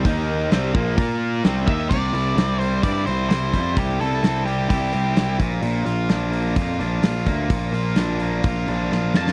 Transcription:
<<
  \new Staff \with { instrumentName = "Lead electric guitar" } { \time 4/4 \key c \mixolydian \tempo 4 = 128 r2. r8 e''8 | d''4. c''8 d''8 c''8 c''4 | g'8 a'4 g'8 g'4. r8 | r1 |
r2. r8 a''8 | }
  \new Staff \with { instrumentName = "Distorted electric guitar" } { \time 4/4 \key c \mixolydian <ees bes ees'>4 <c g c'>8 <bes, f bes>8 <bes f' bes'>4 <c g c'>8 <ees bes ees'>8 | c8 e'8 c'8 g8 e'8 c'8 e'8 g8 | c8 e'8 c'8 g8 e'8 c'8 e'8 bes,8 | bes,8 f'8 d'8 bes8 f'8 d'8 f'8 bes8 |
bes,8 f'8 d'8 bes8 f'8 d'8 f'8 bes8 | }
  \new Staff \with { instrumentName = "Distorted electric guitar" } { \time 4/4 \key c \mixolydian <ees bes ees'>4 <c g c'>8 <bes, f bes>8 <bes f' bes'>4 <c g c'>8 <ees bes ees'>8 | r1 | r1 | r1 |
r1 | }
  \new Staff \with { instrumentName = "Picked electric bass" } { \clef bass \time 4/4 \key c \mixolydian ees,4 c,8 bes,,8 bes,4 c,8 ees,8 | c,8 c,8 c,4 g,8 c,8 c,8 f,8 | c,8 c,8 c,4 c,8 c,8 c,8 bes,,8 | bes,,8 bes,,8 bes,,4 f,8 bes,,8 bes,,8 d,8 |
bes,,8 bes,,8 bes,,4 bes,,8 bes,,8 bes,,8 f,8 | }
  \new DrumStaff \with { instrumentName = "Drums" } \drummode { \time 4/4 <hho bd>4 <hho sn>8 bd8 <hho bd>4 <hho sn>8 bd8 | <cymc bd>8 hho8 <hho sn>8 hho8 <hho bd>8 hho8 <hho sn>8 <hho bd>8 | <hho bd>8 hho8 <hho sn>8 hho8 <hho bd>8 hho8 <hho sn>8 <hho bd>8 | hho8 hho8 <hho sn>8 hho8 <hho bd>8 hho8 <hho sn>8 <hho bd>8 |
<hho bd>8 hho8 <hho sn>8 hho8 <hho bd>8 hho8 sn8 sn16 sn16 | }
>>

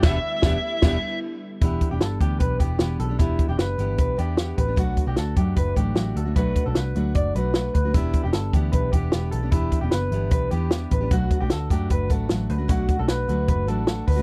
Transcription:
<<
  \new Staff \with { instrumentName = "Lead electric guitar" } { \time 4/4 \key e \minor \tempo 4 = 152 e''2. r4 | r1 | r1 | r1 |
r1 | r1 | r1 | r1 |
r1 | }
  \new Staff \with { instrumentName = "Clean electric guitar" } { \time 4/4 \key e \minor r1 | e'8. g'16 a'8 g'8 b'8 g'4 a'8 | e'8. g'16 b'4 b'8 g'4 b'8 | fis'8. g'16 a'8 g'8 b'8 g'4 a'8 |
b'8. a'16 b'4 d''8 b'4 b'8 | e'8. g'16 a'8 g'8 b'8 g'4 a'8 | e'8. g'16 b'4 b'8 g'4 b'8 | fis'8. g'16 a'8 g'8 b'8 a'4 b'8 |
fis'8. a'16 b'4 b'8 a'4 b'8 | }
  \new Staff \with { instrumentName = "Steel-string acoustic guitar" } { \time 4/4 \key e \minor <e b d' g'>8 r8 <e b d' g'>8 r8 <e b d' g'>8 r4. | <e b d' g'>8. <b d' g'>8. <e b d' g'>4 <e b d' g'>8 <e b d' g'>8. <b d' g'>16 | <e b d' g'>8. <b d' g'>8. <e b d' g'>4 <e b d' g'>8 <e b d' g'>8. <b d' g'>16 | <b, fis a d' fis'>8. <a d' fis'>8. <fis a d' fis'>4 <fis a d' fis'>8 <fis a d' fis'>8. <a d' fis'>16 |
<b, fis a d' fis'>8. <a d' fis'>8. <fis a d' fis'>4 <fis a d' fis'>8 <fis a d' fis'>8. <a d' fis'>16 | <e b d' g'>8. <b d' g'>8. <e b d' g'>4 <e b d' g'>8 <e b d' g'>8. <b d' g'>16 | <e b d' g'>8. <b d' g'>8. <e b d' g'>4 <e b d' g'>8 <e b d' g'>8. <b d' g'>16 | <b, fis a d' fis'>8. <a d' fis'>8. <fis a d' fis'>4 <fis a d' fis'>8 <fis a d' fis'>8. <a d' fis'>16 |
<b, fis a d' fis'>8. <a d' fis'>8. <fis a d' fis'>4 <fis a d' fis'>8 <fis a d' fis'>8. <a d' fis'>16 | }
  \new Staff \with { instrumentName = "Analog synth pad" } { \time 4/4 \key e \minor <d g b e'>1 | r1 | r1 | r1 |
r1 | r1 | r1 | r1 |
r1 | }
  \new Staff \with { instrumentName = "Picked electric bass" } { \clef bass \time 4/4 \key e \minor e,,8 r8 e,,8 r8 e,,8 r4. | e,,8 r16 e,,16 g,,8 d,8 b,,8 e,,8 e,,8 b,,8 | e,,8 r16 e,,16 fis,,8 g,,8 b,,8 e,4 a,,8 | b,,8 r16 b,,16 d,8 fis,8 fis,,8 a,,8 a,,8 d,8 |
b,,8 r16 b,,16 c,8 d,8 fis,,8 b,,4 d,8 | e,,8 r16 e,,16 g,,8 d,8 b,,8 e,,8 e,,8 b,,8 | e,,8 r16 e,,16 fis,,8 g,,8 b,,8 e,4 a,,8 | b,,8 r16 b,,16 d,8 fis,8 fis,,8 a,,8 a,,8 d,8 |
b,,8 r16 b,,8. d,8 fis,,8 a,,4 d,8 | }
  \new DrumStaff \with { instrumentName = "Drums" } \drummode { \time 4/4 <cymc bd sn>4 <bd sn>4 <cymc bd sn>4 r4 | <hh bd>8 <hh bd>8 <hh sn>8 <hh bd>8 <hh bd>8 <hh bd>8 <hh sn>8 hh8 | <hh bd>8 <hh bd>8 <hh sn>8 hh8 <hh bd>8 hh8 <hh sn>8 <hh bd>8 | <hh bd>8 <hh bd>8 <hh sn>8 <hh bd>8 <hh bd>8 <hh bd>8 <hh sn>8 hh8 |
<hh bd>8 <hh bd>8 <hh sn>8 hh8 <hh bd>8 hh8 <hh sn>8 <hh bd>8 | <hh bd>8 <hh bd>8 <hh sn>8 <hh bd>8 <hh bd>8 <hh bd>8 <hh sn>8 hh8 | <hh bd>8 <hh bd>8 <hh sn>8 hh8 <hh bd>8 hh8 <hh sn>8 <hh bd>8 | <hh bd>8 <hh bd>8 <hh sn>8 <hh bd>8 <hh bd>8 <hh bd>8 <hh sn>8 hh8 |
<hh bd>8 <hh bd>8 <hh sn>8 hh8 <hh bd>8 hh8 <hh sn>8 <hho bd>8 | }
>>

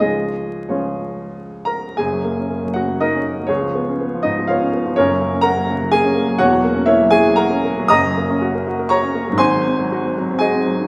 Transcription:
<<
  \new Staff \with { instrumentName = "Grand piano" } { \time 3/4 \key des \major \tempo 4 = 121 <aes' ees''>4 <f' des''>4. <bes' bes''>8 | \key fis \major <gis' gis''>4. <fis' fis''>8 <dis' ais' dis''>4 | <cis' gis' cis''>4. <dis' dis''>8 <eis' cis'' eis''>8 r8 | <cis' ais' cis''>4 <ais' fis'' ais''>4 <gis' gis''>4 |
<fis' cis'' fis''>4 <e' cis'' e''>8 <gis' gis''>8 <ais' fis'' ais''>4 | \key ees \dorian <ees'' bes'' ees'''>2 <des'' bes'' des'''>4 | <c'' aes'' c'''>2 <aes' ees'' aes''>8 r8 | }
  \new Staff \with { instrumentName = "Grand piano" } { \clef bass \time 3/4 \key des \major <des, f aes des'>4 <des, f aes des'>2 | \key fis \major <fis,, fis,>16 fis16 ais16 cis'16 ais16 fis16 cis16 fis16 ais16 cis'16 ais16 fis16 | cis,16 eis16 b16 cis'16 b16 eis16 gis,16 eis16 b16 cis'16 b16 eis16 | <fis,, fis,>16 fis16 ais16 cis'16 ais16 fis16 cis16 fis16 ais16 cis'16 ais16 fis16 |
<e,, e,>16 fis16 ais16 cis'16 ais16 fis16 e16 fis16 ais16 cis'16 ais16 fis16 | \key ees \dorian <ges,, ges,>16 ges16 bes16 des'16 ges'16 bes'16 ges'16 bes'16 ges'16 des'16 bes16 ges16 | <aes,, aes,>16 ges16 c'16 ges16 ges'16 c'16 ges16 c'16 ges'16 c'16 ges16 ees16 | }
>>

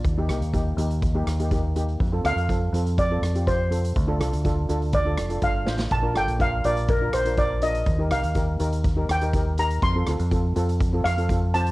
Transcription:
<<
  \new Staff \with { instrumentName = "Steel pan" } { \time 4/4 \key ees \lydian \tempo 4 = 123 d''8 r2. r8 | r8 f''4. d''4 c''4~ | c''8 r4. d''4 f''4 | a''8 g''8 f''8 d''8 bes'8 c''8 d''8 ees''8~ |
ees''8 f''4. r8 g''4 bes''8 | c'''4 r4. f''4 a''8 | }
  \new Staff \with { instrumentName = "Steel pan" } { \time 4/4 \key ees \lydian r16 <bes ees' g'>16 <bes ees' g'>16 r16 <bes ees' g'>16 r16 <bes ees' g'>8 r16 <bes ees' g'>16 r16 <bes ees' g'>16 <bes ees' g'>16 r16 <bes ees' g'>8 | r16 <c' f' a'>16 <c' f' a'>16 r16 <c' f' a'>16 r16 <c' f' a'>8 r16 <c' f' a'>16 r16 <c' f' g'>16 <c' f' g'>16 r16 <c' f' a'>8 | r16 <d' f' a'>16 <d' f' a'>16 r16 <d' f' a'>16 r16 <d' f' a'>8 r16 <d' f' a'>16 r16 <d' f' a'>16 <d' f' a'>16 r16 <d' f' c''>8 | r16 <d' f' bes'>16 <d' f' a'>16 r16 <d' f' bes'>16 r16 <d' f' bes'>8 r16 <d' f' bes'>16 r16 <d' f' bes'>16 <d' f' bes'>16 r16 <d' f' bes'>8 |
r16 <ees' g' bes'>16 <ees' g' bes'>16 r16 <ees' g' bes'>16 r16 <ees' g' bes'>8 r16 <ees' g' bes'>16 r16 <ees' g' bes'>16 <ees' g' bes'>16 r16 <ees' g' bes'>8 | r16 <c' f' a'>16 <c' f' a'>16 r16 <c' f' a'>16 r16 <c' f' a'>8 r16 <c' f' a'>16 r16 <c' f' a'>16 <c' f' a'>16 r16 <c' f' c''>8 | }
  \new Staff \with { instrumentName = "Fingered electric bass" } { \clef bass \time 4/4 \key ees \lydian ees,8 c,16 ees,8. ees,4 ees,4. | f,8 d,16 f,8. f,4 f,4. | d,8 c,16 d,8. d,4 f,,8 g,,8 a,,8 | bes,,8 g,,16 bes,,8. bes,,4 bes,,4. |
ees,8 c,16 ees,8. ees,4 ees,4. | f,8 d,16 f,8. f,4 f,4. | }
  \new DrumStaff \with { instrumentName = "Drums" } \drummode { \time 4/4 <hh bd>8 <hh ss>16 hh16 <hh bd>8 hh16 hh16 <hh bd>8 <hh ss>16 hh16 <hh bd>8 hh16 hh16 | <hh bd>8 <hh ss>16 hh16 <hh bd>8 hh16 hh16 <hh bd>8 <hh ss>16 hh16 <hh bd>8 hh16 hh16 | <hh bd>8 <hh ss>16 hh16 <hh bd>8 hh16 hh16 <hh bd>8 <hh ss>16 hh16 <hh bd>8 sn16 sn16 | <hh bd>8 <hh ss>16 hh16 <hh bd>8 hh16 hh16 <hh bd>8 <hh ss>16 hh16 <hh bd>8 hh16 hh16 |
<hh bd>8 <hh ss>16 hh16 <hh bd>8 hh16 hh16 <hh bd>8 <hh ss>16 hh16 <hh bd>8 hh16 hh16 | <hh bd>8 <hh ss>16 hh16 <hh bd>8 hh16 hh16 <hh bd>8 <hh ss>16 hh16 <hh bd>8 hh16 hh16 | }
>>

